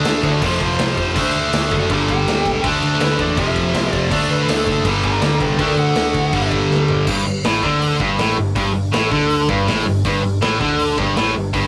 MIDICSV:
0, 0, Header, 1, 5, 480
1, 0, Start_track
1, 0, Tempo, 370370
1, 1501, Time_signature, 4, 2, 24, 8
1, 15127, End_track
2, 0, Start_track
2, 0, Title_t, "Lead electric guitar"
2, 0, Program_c, 0, 29
2, 317, Note_on_c, 0, 66, 82
2, 326, Note_on_c, 0, 74, 93
2, 547, Note_off_c, 0, 74, 0
2, 550, Note_off_c, 0, 66, 0
2, 555, Note_on_c, 0, 69, 84
2, 565, Note_on_c, 0, 72, 108
2, 772, Note_off_c, 0, 69, 0
2, 787, Note_off_c, 0, 72, 0
2, 800, Note_on_c, 0, 72, 108
2, 1720, Note_off_c, 0, 72, 0
2, 2242, Note_on_c, 0, 66, 87
2, 2250, Note_on_c, 0, 74, 85
2, 2465, Note_off_c, 0, 74, 0
2, 2471, Note_off_c, 0, 66, 0
2, 2481, Note_on_c, 0, 65, 85
2, 2488, Note_on_c, 0, 74, 77
2, 2693, Note_off_c, 0, 65, 0
2, 2703, Note_off_c, 0, 74, 0
2, 2728, Note_on_c, 0, 79, 106
2, 3410, Note_off_c, 0, 79, 0
2, 3912, Note_on_c, 0, 71, 105
2, 4155, Note_off_c, 0, 71, 0
2, 4155, Note_on_c, 0, 74, 85
2, 4378, Note_off_c, 0, 74, 0
2, 4385, Note_on_c, 0, 76, 121
2, 5098, Note_off_c, 0, 76, 0
2, 5098, Note_on_c, 0, 74, 121
2, 5310, Note_off_c, 0, 74, 0
2, 5334, Note_on_c, 0, 74, 91
2, 5566, Note_off_c, 0, 74, 0
2, 5581, Note_on_c, 0, 71, 94
2, 5817, Note_off_c, 0, 71, 0
2, 5817, Note_on_c, 0, 69, 110
2, 6280, Note_off_c, 0, 69, 0
2, 6539, Note_on_c, 0, 74, 95
2, 6546, Note_on_c, 0, 82, 106
2, 6745, Note_off_c, 0, 74, 0
2, 6755, Note_off_c, 0, 82, 0
2, 6761, Note_on_c, 0, 74, 92
2, 6771, Note_on_c, 0, 82, 94
2, 6989, Note_off_c, 0, 74, 0
2, 7004, Note_off_c, 0, 82, 0
2, 7012, Note_on_c, 0, 71, 85
2, 7023, Note_on_c, 0, 79, 100
2, 7235, Note_off_c, 0, 71, 0
2, 7245, Note_off_c, 0, 79, 0
2, 7248, Note_on_c, 0, 70, 76
2, 7261, Note_on_c, 0, 79, 94
2, 7473, Note_off_c, 0, 70, 0
2, 7498, Note_off_c, 0, 79, 0
2, 7498, Note_on_c, 0, 78, 102
2, 8427, Note_off_c, 0, 78, 0
2, 15127, End_track
3, 0, Start_track
3, 0, Title_t, "Distorted electric guitar"
3, 0, Program_c, 1, 30
3, 0, Note_on_c, 1, 50, 104
3, 0, Note_on_c, 1, 57, 96
3, 0, Note_on_c, 1, 62, 113
3, 522, Note_off_c, 1, 50, 0
3, 534, Note_off_c, 1, 57, 0
3, 540, Note_on_c, 1, 41, 85
3, 543, Note_off_c, 1, 62, 0
3, 565, Note_on_c, 1, 48, 84
3, 583, Note_on_c, 1, 53, 114
3, 1485, Note_off_c, 1, 41, 0
3, 1486, Note_off_c, 1, 48, 0
3, 1491, Note_on_c, 1, 50, 90
3, 1506, Note_off_c, 1, 53, 0
3, 1516, Note_on_c, 1, 57, 110
3, 1535, Note_on_c, 1, 62, 103
3, 2439, Note_off_c, 1, 50, 0
3, 2452, Note_off_c, 1, 57, 0
3, 2452, Note_on_c, 1, 43, 91
3, 2461, Note_off_c, 1, 62, 0
3, 2474, Note_on_c, 1, 50, 91
3, 2494, Note_on_c, 1, 55, 112
3, 3397, Note_off_c, 1, 50, 0
3, 3398, Note_off_c, 1, 43, 0
3, 3413, Note_on_c, 1, 50, 98
3, 3420, Note_off_c, 1, 55, 0
3, 3435, Note_on_c, 1, 57, 106
3, 3459, Note_on_c, 1, 62, 118
3, 4358, Note_off_c, 1, 50, 0
3, 4362, Note_on_c, 1, 41, 100
3, 4369, Note_off_c, 1, 57, 0
3, 4382, Note_off_c, 1, 62, 0
3, 4386, Note_on_c, 1, 48, 101
3, 4408, Note_on_c, 1, 53, 99
3, 5310, Note_off_c, 1, 48, 0
3, 5312, Note_off_c, 1, 41, 0
3, 5315, Note_on_c, 1, 50, 97
3, 5332, Note_off_c, 1, 53, 0
3, 5337, Note_on_c, 1, 57, 106
3, 5356, Note_on_c, 1, 62, 120
3, 6269, Note_off_c, 1, 50, 0
3, 6277, Note_on_c, 1, 43, 97
3, 6280, Note_off_c, 1, 57, 0
3, 6300, Note_on_c, 1, 50, 111
3, 6320, Note_on_c, 1, 55, 115
3, 7216, Note_off_c, 1, 50, 0
3, 7230, Note_off_c, 1, 43, 0
3, 7232, Note_on_c, 1, 50, 103
3, 7250, Note_off_c, 1, 55, 0
3, 7255, Note_on_c, 1, 57, 110
3, 7268, Note_off_c, 1, 62, 0
3, 7273, Note_on_c, 1, 62, 120
3, 8188, Note_off_c, 1, 50, 0
3, 8198, Note_on_c, 1, 43, 78
3, 8199, Note_off_c, 1, 57, 0
3, 8208, Note_off_c, 1, 62, 0
3, 8220, Note_on_c, 1, 50, 95
3, 8240, Note_on_c, 1, 55, 86
3, 9151, Note_off_c, 1, 43, 0
3, 9162, Note_off_c, 1, 50, 0
3, 9167, Note_on_c, 1, 43, 118
3, 9173, Note_off_c, 1, 55, 0
3, 9395, Note_off_c, 1, 43, 0
3, 9410, Note_on_c, 1, 43, 72
3, 9604, Note_off_c, 1, 43, 0
3, 9654, Note_on_c, 1, 45, 110
3, 9891, Note_off_c, 1, 45, 0
3, 9891, Note_on_c, 1, 50, 109
3, 10366, Note_off_c, 1, 50, 0
3, 10372, Note_on_c, 1, 43, 109
3, 10607, Note_off_c, 1, 43, 0
3, 10611, Note_on_c, 1, 45, 111
3, 10847, Note_off_c, 1, 45, 0
3, 10854, Note_on_c, 1, 43, 77
3, 11047, Note_off_c, 1, 43, 0
3, 11091, Note_on_c, 1, 43, 109
3, 11311, Note_off_c, 1, 43, 0
3, 11326, Note_on_c, 1, 43, 75
3, 11524, Note_off_c, 1, 43, 0
3, 11569, Note_on_c, 1, 45, 109
3, 11807, Note_off_c, 1, 45, 0
3, 11815, Note_on_c, 1, 50, 115
3, 12290, Note_off_c, 1, 50, 0
3, 12291, Note_on_c, 1, 43, 102
3, 12528, Note_off_c, 1, 43, 0
3, 12536, Note_on_c, 1, 45, 103
3, 12771, Note_off_c, 1, 45, 0
3, 12776, Note_on_c, 1, 43, 75
3, 12971, Note_off_c, 1, 43, 0
3, 13027, Note_on_c, 1, 43, 116
3, 13253, Note_off_c, 1, 43, 0
3, 13268, Note_on_c, 1, 43, 78
3, 13457, Note_off_c, 1, 43, 0
3, 13504, Note_on_c, 1, 45, 108
3, 13736, Note_off_c, 1, 45, 0
3, 13744, Note_on_c, 1, 50, 108
3, 14217, Note_off_c, 1, 50, 0
3, 14219, Note_on_c, 1, 43, 109
3, 14454, Note_off_c, 1, 43, 0
3, 14462, Note_on_c, 1, 45, 109
3, 14696, Note_off_c, 1, 45, 0
3, 14701, Note_on_c, 1, 43, 73
3, 14895, Note_off_c, 1, 43, 0
3, 14944, Note_on_c, 1, 43, 120
3, 15127, Note_off_c, 1, 43, 0
3, 15127, End_track
4, 0, Start_track
4, 0, Title_t, "Picked electric bass"
4, 0, Program_c, 2, 34
4, 78, Note_on_c, 2, 38, 100
4, 264, Note_off_c, 2, 38, 0
4, 305, Note_on_c, 2, 38, 97
4, 496, Note_off_c, 2, 38, 0
4, 543, Note_on_c, 2, 29, 101
4, 734, Note_off_c, 2, 29, 0
4, 784, Note_on_c, 2, 29, 95
4, 975, Note_off_c, 2, 29, 0
4, 1030, Note_on_c, 2, 36, 91
4, 1218, Note_off_c, 2, 36, 0
4, 1263, Note_on_c, 2, 29, 96
4, 1502, Note_on_c, 2, 38, 95
4, 1522, Note_off_c, 2, 29, 0
4, 1693, Note_off_c, 2, 38, 0
4, 1746, Note_on_c, 2, 38, 98
4, 1935, Note_off_c, 2, 38, 0
4, 1990, Note_on_c, 2, 38, 88
4, 2177, Note_off_c, 2, 38, 0
4, 2221, Note_on_c, 2, 30, 95
4, 2411, Note_off_c, 2, 30, 0
4, 2460, Note_on_c, 2, 31, 101
4, 2651, Note_off_c, 2, 31, 0
4, 2701, Note_on_c, 2, 31, 100
4, 2891, Note_off_c, 2, 31, 0
4, 2945, Note_on_c, 2, 38, 100
4, 3133, Note_off_c, 2, 38, 0
4, 3180, Note_on_c, 2, 37, 98
4, 3370, Note_off_c, 2, 37, 0
4, 3419, Note_on_c, 2, 38, 96
4, 3609, Note_off_c, 2, 38, 0
4, 3669, Note_on_c, 2, 38, 97
4, 3855, Note_off_c, 2, 38, 0
4, 3906, Note_on_c, 2, 38, 94
4, 4093, Note_off_c, 2, 38, 0
4, 4139, Note_on_c, 2, 40, 108
4, 4329, Note_off_c, 2, 40, 0
4, 4375, Note_on_c, 2, 29, 103
4, 4567, Note_off_c, 2, 29, 0
4, 4613, Note_on_c, 2, 29, 95
4, 4805, Note_off_c, 2, 29, 0
4, 4850, Note_on_c, 2, 36, 91
4, 5043, Note_off_c, 2, 36, 0
4, 5097, Note_on_c, 2, 29, 99
4, 5287, Note_off_c, 2, 29, 0
4, 5333, Note_on_c, 2, 38, 96
4, 5525, Note_off_c, 2, 38, 0
4, 5569, Note_on_c, 2, 38, 93
4, 5762, Note_off_c, 2, 38, 0
4, 5804, Note_on_c, 2, 38, 96
4, 5999, Note_off_c, 2, 38, 0
4, 6049, Note_on_c, 2, 30, 100
4, 6242, Note_off_c, 2, 30, 0
4, 6285, Note_on_c, 2, 31, 94
4, 6480, Note_off_c, 2, 31, 0
4, 6526, Note_on_c, 2, 31, 93
4, 6720, Note_off_c, 2, 31, 0
4, 6769, Note_on_c, 2, 38, 102
4, 6962, Note_off_c, 2, 38, 0
4, 7011, Note_on_c, 2, 36, 102
4, 7203, Note_off_c, 2, 36, 0
4, 7246, Note_on_c, 2, 38, 89
4, 7440, Note_off_c, 2, 38, 0
4, 7483, Note_on_c, 2, 38, 95
4, 7678, Note_off_c, 2, 38, 0
4, 7726, Note_on_c, 2, 38, 91
4, 7920, Note_off_c, 2, 38, 0
4, 7967, Note_on_c, 2, 38, 110
4, 8161, Note_off_c, 2, 38, 0
4, 8209, Note_on_c, 2, 31, 94
4, 8402, Note_off_c, 2, 31, 0
4, 8447, Note_on_c, 2, 31, 103
4, 8641, Note_off_c, 2, 31, 0
4, 8685, Note_on_c, 2, 38, 92
4, 8880, Note_off_c, 2, 38, 0
4, 8927, Note_on_c, 2, 31, 86
4, 9121, Note_off_c, 2, 31, 0
4, 9165, Note_on_c, 2, 31, 100
4, 9392, Note_off_c, 2, 31, 0
4, 9412, Note_on_c, 2, 31, 82
4, 9636, Note_off_c, 2, 31, 0
4, 9648, Note_on_c, 2, 33, 92
4, 9874, Note_off_c, 2, 33, 0
4, 9886, Note_on_c, 2, 38, 106
4, 10337, Note_off_c, 2, 38, 0
4, 10372, Note_on_c, 2, 31, 104
4, 10597, Note_off_c, 2, 31, 0
4, 10622, Note_on_c, 2, 33, 89
4, 10843, Note_off_c, 2, 33, 0
4, 10862, Note_on_c, 2, 31, 83
4, 11083, Note_off_c, 2, 31, 0
4, 11095, Note_on_c, 2, 31, 94
4, 11319, Note_off_c, 2, 31, 0
4, 11346, Note_on_c, 2, 31, 77
4, 11566, Note_off_c, 2, 31, 0
4, 11581, Note_on_c, 2, 33, 92
4, 11803, Note_off_c, 2, 33, 0
4, 11820, Note_on_c, 2, 38, 100
4, 12266, Note_off_c, 2, 38, 0
4, 12295, Note_on_c, 2, 31, 95
4, 12521, Note_off_c, 2, 31, 0
4, 12548, Note_on_c, 2, 33, 105
4, 12768, Note_off_c, 2, 33, 0
4, 12795, Note_on_c, 2, 31, 91
4, 13012, Note_off_c, 2, 31, 0
4, 13025, Note_on_c, 2, 31, 94
4, 13246, Note_off_c, 2, 31, 0
4, 13272, Note_on_c, 2, 31, 94
4, 13490, Note_off_c, 2, 31, 0
4, 13505, Note_on_c, 2, 33, 92
4, 13727, Note_off_c, 2, 33, 0
4, 13752, Note_on_c, 2, 38, 116
4, 14195, Note_off_c, 2, 38, 0
4, 14234, Note_on_c, 2, 31, 95
4, 14453, Note_off_c, 2, 31, 0
4, 14466, Note_on_c, 2, 33, 100
4, 14688, Note_off_c, 2, 33, 0
4, 14719, Note_on_c, 2, 31, 86
4, 14936, Note_off_c, 2, 31, 0
4, 14958, Note_on_c, 2, 31, 98
4, 15127, Note_off_c, 2, 31, 0
4, 15127, End_track
5, 0, Start_track
5, 0, Title_t, "Drums"
5, 62, Note_on_c, 9, 49, 93
5, 71, Note_on_c, 9, 38, 127
5, 191, Note_off_c, 9, 49, 0
5, 200, Note_off_c, 9, 38, 0
5, 303, Note_on_c, 9, 36, 83
5, 305, Note_on_c, 9, 49, 71
5, 433, Note_off_c, 9, 36, 0
5, 435, Note_off_c, 9, 49, 0
5, 543, Note_on_c, 9, 36, 112
5, 543, Note_on_c, 9, 49, 100
5, 672, Note_off_c, 9, 36, 0
5, 672, Note_off_c, 9, 49, 0
5, 782, Note_on_c, 9, 36, 89
5, 784, Note_on_c, 9, 49, 69
5, 911, Note_off_c, 9, 36, 0
5, 913, Note_off_c, 9, 49, 0
5, 1022, Note_on_c, 9, 49, 96
5, 1031, Note_on_c, 9, 38, 126
5, 1151, Note_off_c, 9, 49, 0
5, 1161, Note_off_c, 9, 38, 0
5, 1262, Note_on_c, 9, 36, 89
5, 1262, Note_on_c, 9, 49, 76
5, 1392, Note_off_c, 9, 36, 0
5, 1392, Note_off_c, 9, 49, 0
5, 1501, Note_on_c, 9, 36, 116
5, 1501, Note_on_c, 9, 49, 102
5, 1630, Note_off_c, 9, 49, 0
5, 1631, Note_off_c, 9, 36, 0
5, 1741, Note_on_c, 9, 49, 65
5, 1871, Note_off_c, 9, 49, 0
5, 1981, Note_on_c, 9, 49, 99
5, 1991, Note_on_c, 9, 38, 124
5, 2111, Note_off_c, 9, 49, 0
5, 2120, Note_off_c, 9, 38, 0
5, 2218, Note_on_c, 9, 49, 64
5, 2220, Note_on_c, 9, 36, 94
5, 2347, Note_off_c, 9, 49, 0
5, 2350, Note_off_c, 9, 36, 0
5, 2456, Note_on_c, 9, 49, 85
5, 2460, Note_on_c, 9, 36, 103
5, 2586, Note_off_c, 9, 49, 0
5, 2590, Note_off_c, 9, 36, 0
5, 2702, Note_on_c, 9, 36, 96
5, 2707, Note_on_c, 9, 49, 62
5, 2832, Note_off_c, 9, 36, 0
5, 2837, Note_off_c, 9, 49, 0
5, 2950, Note_on_c, 9, 49, 81
5, 2959, Note_on_c, 9, 38, 110
5, 3080, Note_off_c, 9, 49, 0
5, 3089, Note_off_c, 9, 38, 0
5, 3181, Note_on_c, 9, 36, 90
5, 3188, Note_on_c, 9, 49, 63
5, 3311, Note_off_c, 9, 36, 0
5, 3317, Note_off_c, 9, 49, 0
5, 3421, Note_on_c, 9, 36, 127
5, 3421, Note_on_c, 9, 49, 96
5, 3551, Note_off_c, 9, 36, 0
5, 3551, Note_off_c, 9, 49, 0
5, 3661, Note_on_c, 9, 49, 64
5, 3791, Note_off_c, 9, 49, 0
5, 3893, Note_on_c, 9, 49, 88
5, 3902, Note_on_c, 9, 38, 122
5, 4023, Note_off_c, 9, 49, 0
5, 4032, Note_off_c, 9, 38, 0
5, 4134, Note_on_c, 9, 49, 67
5, 4135, Note_on_c, 9, 36, 95
5, 4263, Note_off_c, 9, 49, 0
5, 4264, Note_off_c, 9, 36, 0
5, 4373, Note_on_c, 9, 36, 114
5, 4375, Note_on_c, 9, 49, 89
5, 4503, Note_off_c, 9, 36, 0
5, 4504, Note_off_c, 9, 49, 0
5, 4612, Note_on_c, 9, 36, 97
5, 4613, Note_on_c, 9, 49, 74
5, 4742, Note_off_c, 9, 36, 0
5, 4743, Note_off_c, 9, 49, 0
5, 4853, Note_on_c, 9, 49, 95
5, 4862, Note_on_c, 9, 38, 118
5, 4982, Note_off_c, 9, 49, 0
5, 4991, Note_off_c, 9, 38, 0
5, 5092, Note_on_c, 9, 36, 93
5, 5093, Note_on_c, 9, 49, 78
5, 5221, Note_off_c, 9, 36, 0
5, 5222, Note_off_c, 9, 49, 0
5, 5331, Note_on_c, 9, 36, 121
5, 5333, Note_on_c, 9, 49, 107
5, 5461, Note_off_c, 9, 36, 0
5, 5463, Note_off_c, 9, 49, 0
5, 5580, Note_on_c, 9, 49, 63
5, 5709, Note_off_c, 9, 49, 0
5, 5813, Note_on_c, 9, 49, 105
5, 5823, Note_on_c, 9, 38, 123
5, 5943, Note_off_c, 9, 49, 0
5, 5952, Note_off_c, 9, 38, 0
5, 6047, Note_on_c, 9, 36, 85
5, 6050, Note_on_c, 9, 49, 71
5, 6177, Note_off_c, 9, 36, 0
5, 6180, Note_off_c, 9, 49, 0
5, 6286, Note_on_c, 9, 36, 122
5, 6288, Note_on_c, 9, 49, 91
5, 6415, Note_off_c, 9, 36, 0
5, 6418, Note_off_c, 9, 49, 0
5, 6526, Note_on_c, 9, 36, 82
5, 6527, Note_on_c, 9, 49, 69
5, 6655, Note_off_c, 9, 36, 0
5, 6657, Note_off_c, 9, 49, 0
5, 6760, Note_on_c, 9, 49, 91
5, 6769, Note_on_c, 9, 38, 118
5, 6890, Note_off_c, 9, 49, 0
5, 6899, Note_off_c, 9, 38, 0
5, 7006, Note_on_c, 9, 36, 106
5, 7008, Note_on_c, 9, 49, 68
5, 7135, Note_off_c, 9, 36, 0
5, 7138, Note_off_c, 9, 49, 0
5, 7245, Note_on_c, 9, 36, 127
5, 7245, Note_on_c, 9, 49, 87
5, 7375, Note_off_c, 9, 36, 0
5, 7375, Note_off_c, 9, 49, 0
5, 7483, Note_on_c, 9, 49, 57
5, 7612, Note_off_c, 9, 49, 0
5, 7717, Note_on_c, 9, 49, 93
5, 7726, Note_on_c, 9, 38, 125
5, 7847, Note_off_c, 9, 49, 0
5, 7856, Note_off_c, 9, 38, 0
5, 7963, Note_on_c, 9, 36, 95
5, 7963, Note_on_c, 9, 49, 66
5, 8092, Note_off_c, 9, 49, 0
5, 8093, Note_off_c, 9, 36, 0
5, 8200, Note_on_c, 9, 49, 87
5, 8204, Note_on_c, 9, 36, 115
5, 8330, Note_off_c, 9, 49, 0
5, 8333, Note_off_c, 9, 36, 0
5, 8439, Note_on_c, 9, 49, 68
5, 8442, Note_on_c, 9, 36, 78
5, 8568, Note_off_c, 9, 49, 0
5, 8572, Note_off_c, 9, 36, 0
5, 8694, Note_on_c, 9, 38, 73
5, 8823, Note_off_c, 9, 38, 0
5, 8921, Note_on_c, 9, 43, 101
5, 9051, Note_off_c, 9, 43, 0
5, 9162, Note_on_c, 9, 57, 127
5, 9165, Note_on_c, 9, 36, 113
5, 9292, Note_off_c, 9, 57, 0
5, 9294, Note_off_c, 9, 36, 0
5, 9643, Note_on_c, 9, 46, 69
5, 9652, Note_on_c, 9, 38, 126
5, 9773, Note_off_c, 9, 46, 0
5, 9782, Note_off_c, 9, 38, 0
5, 9887, Note_on_c, 9, 36, 102
5, 10016, Note_off_c, 9, 36, 0
5, 10131, Note_on_c, 9, 46, 61
5, 10261, Note_off_c, 9, 46, 0
5, 10368, Note_on_c, 9, 36, 101
5, 10498, Note_off_c, 9, 36, 0
5, 10610, Note_on_c, 9, 46, 67
5, 10619, Note_on_c, 9, 38, 106
5, 10740, Note_off_c, 9, 46, 0
5, 10749, Note_off_c, 9, 38, 0
5, 11093, Note_on_c, 9, 36, 120
5, 11096, Note_on_c, 9, 46, 65
5, 11223, Note_off_c, 9, 36, 0
5, 11225, Note_off_c, 9, 46, 0
5, 11576, Note_on_c, 9, 46, 67
5, 11585, Note_on_c, 9, 38, 127
5, 11705, Note_off_c, 9, 46, 0
5, 11715, Note_off_c, 9, 38, 0
5, 11814, Note_on_c, 9, 36, 92
5, 11944, Note_off_c, 9, 36, 0
5, 12051, Note_on_c, 9, 46, 65
5, 12180, Note_off_c, 9, 46, 0
5, 12297, Note_on_c, 9, 36, 116
5, 12427, Note_off_c, 9, 36, 0
5, 12542, Note_on_c, 9, 46, 75
5, 12551, Note_on_c, 9, 38, 116
5, 12672, Note_off_c, 9, 46, 0
5, 12681, Note_off_c, 9, 38, 0
5, 13024, Note_on_c, 9, 36, 111
5, 13030, Note_on_c, 9, 46, 69
5, 13153, Note_off_c, 9, 36, 0
5, 13159, Note_off_c, 9, 46, 0
5, 13502, Note_on_c, 9, 46, 72
5, 13511, Note_on_c, 9, 38, 127
5, 13632, Note_off_c, 9, 46, 0
5, 13641, Note_off_c, 9, 38, 0
5, 13748, Note_on_c, 9, 36, 102
5, 13877, Note_off_c, 9, 36, 0
5, 13986, Note_on_c, 9, 46, 61
5, 14116, Note_off_c, 9, 46, 0
5, 14229, Note_on_c, 9, 36, 107
5, 14359, Note_off_c, 9, 36, 0
5, 14470, Note_on_c, 9, 46, 64
5, 14479, Note_on_c, 9, 38, 118
5, 14600, Note_off_c, 9, 46, 0
5, 14609, Note_off_c, 9, 38, 0
5, 14952, Note_on_c, 9, 36, 116
5, 14954, Note_on_c, 9, 46, 64
5, 15082, Note_off_c, 9, 36, 0
5, 15084, Note_off_c, 9, 46, 0
5, 15127, End_track
0, 0, End_of_file